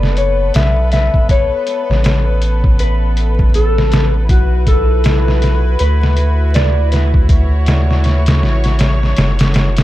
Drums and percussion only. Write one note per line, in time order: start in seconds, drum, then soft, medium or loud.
0.03 snare soft
0.17 closed hi-hat medium
0.54 snare loud
0.54 closed hi-hat medium
0.92 snare soft
0.92 closed hi-hat medium
1.14 kick medium
1.29 kick loud
1.29 closed hi-hat medium
1.67 closed hi-hat medium
1.91 snare soft
2.04 snare loud
2.04 closed hi-hat medium
2.42 closed hi-hat medium
2.64 kick loud
2.79 closed hi-hat medium
3.17 closed hi-hat medium
3.39 kick medium
3.54 closed hi-hat medium
3.78 snare medium
3.92 snare loud
3.92 closed hi-hat medium
4.29 kick loud
4.29 closed hi-hat medium
4.67 kick medium
4.67 closed hi-hat medium
5.04 snare loud
5.04 closed hi-hat medium
5.28 snare soft
5.42 snare soft
5.42 closed hi-hat medium
5.79 closed hi-hat medium
6.03 snare soft
6.17 closed hi-hat medium
6.54 snare loud
6.54 closed hi-hat medium
6.92 snare soft
6.92 closed hi-hat medium
7.14 kick loud
7.29 kick loud
7.29 closed hi-hat medium
7.66 snare medium
7.66 closed hi-hat medium
7.91 snare soft
8.04 snare soft
8.04 closed hi-hat medium
8.26 snare loud
8.26 closed hi-hat medium
8.43 snare soft
8.64 snare soft
8.64 closed hi-hat medium
8.79 snare loud
8.79 closed hi-hat medium
9.03 snare soft
9.16 snare loud
9.16 closed hi-hat medium
9.39 snare loud
9.39 closed hi-hat medium
9.54 snare loud
9.54 closed hi-hat medium
9.77 snare loud
9.77 closed hi-hat medium